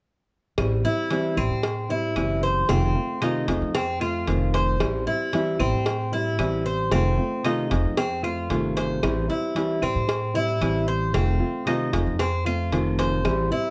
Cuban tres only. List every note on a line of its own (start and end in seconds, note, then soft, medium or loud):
0.85 1.36 E4 medium
1.37 1.89 C4 medium
1.90 2.41 E4 medium
2.43 2.69 C5 medium
2.69 3.21 C4 medium
3.22 3.73 D#4 medium
3.75 4.00 C4 medium
4.01 4.52 F4 medium
4.54 5.05 C5 medium
5.07 5.58 E4 medium
5.60 6.11 C4 medium
6.13 6.64 E4 medium
6.66 6.91 C5 medium
6.92 7.43 C4 medium
7.45 7.96 D#4 medium
7.97 8.23 C4 medium
8.24 8.75 F4 medium
8.77 9.28 C5 medium
9.30 9.81 E4 medium
9.83 10.34 C4 medium
10.35 10.86 E4 medium
10.88 11.13 C5 medium
11.14 11.65 C4 medium
11.67 12.18 D#4 medium
12.20 12.45 C4 medium
12.46 12.97 F4 medium
12.99 13.50 C5 medium
13.52 13.70 E4 medium